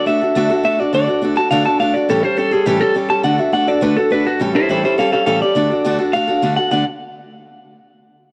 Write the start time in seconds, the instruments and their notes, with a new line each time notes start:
0.06 steel-string acoustic guitar A3 D4 F#4 A4, clean electric guitar E5
0.21 steel-string acoustic guitar D4 F#4 A4
0.35 steel-string acoustic guitar D3 A3 D4 F#4 A4
0.50 steel-string acoustic guitar D4 F#4 A4
0.64 steel-string acoustic guitar A3 D4 F#4 A4, clean electric guitar E5
0.79 steel-string acoustic guitar D4 F#4 A4, clean electric guitar D5
0.93 steel-string acoustic guitar D3 A3 D4 F#4 A4, clean electric guitar D5
1.07 steel-string acoustic guitar D4 F#4 A4
1.22 steel-string acoustic guitar A3 D4 F#4 A4
1.36 steel-string acoustic guitar D4 F#4 A4, clean electric guitar A5
1.51 steel-string acoustic guitar D3 A3 D4 F#4 A4, clean electric guitar F5
1.65 steel-string acoustic guitar D4 F#4 A4, clean electric guitar A5
1.80 steel-string acoustic guitar A3 D4 F#4 A4, clean electric guitar F5
1.94 steel-string acoustic guitar D4 F#4 A4, clean electric guitar D5
2.09 steel-string acoustic guitar A2 E3 G3 C#4 G4 A4, clean electric guitar A4
2.23 steel-string acoustic guitar G3 C#4 G4 A4, clean electric guitar C5
2.37 steel-string acoustic guitar G3 C#4 G4 A4, clean electric guitar A4
2.51 steel-string acoustic guitar G3 C#4 G4 A4, clean electric guitar G#4
2.66 steel-string acoustic guitar A2 E3 G3 C#4 G4 A4, clean electric guitar G4
2.80 steel-string acoustic guitar G3 C#4 G4 A4, clean electric guitar A4
2.94 steel-string acoustic guitar G3 C#4 G4 A4
3.08 steel-string acoustic guitar G3 C#4 G4 A4, clean electric guitar A5
3.23 steel-string acoustic guitar D3 A3 D4 F#4 A4, clean electric guitar F#5
3.38 steel-string acoustic guitar D4 F#4 A4, clean electric guitar E5
3.52 steel-string acoustic guitar A3 D4 F#4 A4, clean electric guitar F#5
3.67 steel-string acoustic guitar D4 F#4 A4, clean electric guitar D5
3.81 steel-string acoustic guitar D3 A3 D4 F#4 A4, clean electric guitar B4
3.96 steel-string acoustic guitar D4 F#4 A4, clean electric guitar A4
4.10 steel-string acoustic guitar A3 D4 F#4 A4, clean electric guitar B4
4.25 steel-string acoustic guitar D4 F#4 A4, clean electric guitar F#4
4.39 steel-string acoustic guitar A2 E3 G3 C#4 G4 A4
4.54 steel-string acoustic guitar G3 C#4 G4 A4, clean electric guitar E4 C5
4.69 steel-string acoustic guitar A2 E3 G3 C#4 G4 A4, clean electric guitar E4 C5
4.84 steel-string acoustic guitar G3 C#4 G4 A4, clean electric guitar E4 C5
4.98 steel-string acoustic guitar G3 C#4 G4 A4, clean electric guitar A4 F5
5.12 steel-string acoustic guitar G3 C#4 G4 A4, clean electric guitar A4 F5
5.26 steel-string acoustic guitar A2 E3 G3 C#4 G4 A4, clean electric guitar A4 F5
5.41 steel-string acoustic guitar G3 C#4 G4 A4, clean electric guitar D5
5.55 steel-string acoustic guitar D3 A3 D4 F#4 A4
5.70 steel-string acoustic guitar D4 F#4 A4
5.85 steel-string acoustic guitar D3 A3 D4 F#4 A4
5.99 steel-string acoustic guitar D4 F#4 A4
6.13 steel-string acoustic guitar A3 D4 F#4 A4, clean electric guitar F5
6.27 steel-string acoustic guitar D4 F#4 A4
6.42 steel-string acoustic guitar D3 A3 D4 F#4 A4
6.56 steel-string acoustic guitar D4 F#4 A4, clean electric guitar F#5
6.71 steel-string acoustic guitar D3 A3 D4 F#4 A4, clean electric guitar F#5